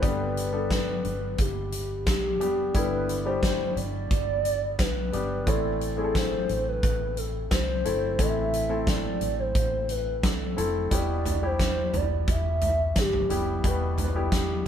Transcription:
0.02 G1 G2 D3 G3 B3 D4 G4 B4, kick, closed hi-hat
0.37 closed hi-hat
0.52 G3 B3 D4 A4
0.71 B4, kick, snare, closed hi-hat
1.05 G1, closed hi-hat
1.38 G1 G4, kick, closed hi-hat
1.72 closed hi-hat
2.07 B1 G4, kick, snare, closed hi-hat
2.40 F1 G3 B3 D4 G4, closed hi-hat
2.74 G1 G2 D3 G3 B3 D4 E4 B4, kick, closed hi-hat
3.09 closed hi-hat
3.25 B2 G3 D4 G4 C5
3.43 kick, snare, closed hi-hat
3.76 G1 D5, closed hi-hat
4.11 G1, kick, closed hi-hat
4.45 closed hi-hat
4.79 B1 B4, kick, snare, closed hi-hat
5.12 G1 G3 B3 D4 G4, closed hi-hat
5.46 A1 A2 E3 A3 C4 E4 A4 D5, kick, closed hi-hat
5.81 closed hi-hat
5.97 A3 C4 E4 G#4
6.04 A4
6.15 C5, kick, snare, closed hi-hat
6.49 A1, closed hi-hat
6.68 B4
6.83 A1, kick, closed hi-hat
7.17 A4, closed hi-hat
7.51 C2 C5, kick, snare, closed hi-hat
7.85 G1 A3 C4 E4 A4, closed hi-hat
8.18 A1 A2 E3 A3 C4 E4 A4 E5, kick, closed hi-hat
8.53 closed hi-hat
8.69 A3 C4 E4 A4
8.87 D5, kick, snare, closed hi-hat
9.21 A1, closed hi-hat
9.39 C5
9.55 A1, kick, closed hi-hat
9.89 B4, closed hi-hat
10.23 C2 A4, kick, snare, closed hi-hat
10.57 F1 A3 C4 E4 A4, closed hi-hat
10.90 E1 B2 G3 B3 E4 G4 D5, kick, closed hi-hat
11.25 closed hi-hat, floor tom
11.42 G3 E4 G4 C5
11.59 kick, snare, closed hi-hat
11.93 E1 D5, closed hi-hat, floor tom
12.28 E1 E5, kick, closed hi-hat
12.61 closed hi-hat, floor tom
12.96 G1 G4, kick, snare, closed hi-hat
13.13 floor tom
13.29 F1 G3 B3 E4 G4, closed hi-hat
13.64 E1 B2 G3 B3 E4 G4 B4, kick, closed hi-hat
13.98 B4, closed hi-hat, floor tom
14.15 G3 B3 E4 G4
14.32 G4, kick, snare, closed hi-hat

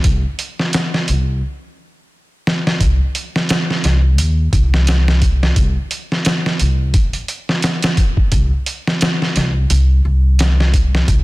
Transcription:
0.04 C2, kick, closed hi-hat
0.39 closed hi-hat
0.59 snare
0.73 snare, closed hi-hat
0.94 snare
1.08 C2, closed hi-hat
2.47 snare
2.67 snare
2.80 C2, kick, closed hi-hat
3.15 closed hi-hat
3.36 snare
3.49 snare, closed hi-hat
3.70 snare
3.84 C2, snare, closed hi-hat
4.18 D#2, closed hi-hat
4.53 C2, kick, closed hi-hat
4.74 snare
4.87 snare, closed hi-hat
5.08 snare
5.22 kick, closed hi-hat
5.43 snare
5.56 C2, kick, closed hi-hat
5.91 closed hi-hat
6.12 snare
6.25 snare, closed hi-hat
6.46 snare
6.59 C2, closed hi-hat
6.94 kick, closed hi-hat
7.13 closed hi-hat
7.28 closed hi-hat
7.49 snare
7.62 snare, closed hi-hat
7.82 snare, closed hi-hat
7.97 kick, closed hi-hat
8.17 kick
8.32 C2, kick, closed hi-hat
8.66 closed hi-hat
8.87 snare
9.01 snare, closed hi-hat
9.22 snare
9.36 C2, snare, closed hi-hat
9.70 C2, closed hi-hat
10.05 C2
10.39 snare, closed hi-hat
10.60 snare
10.74 kick, closed hi-hat
10.95 snare
11.08 C2, kick, closed hi-hat

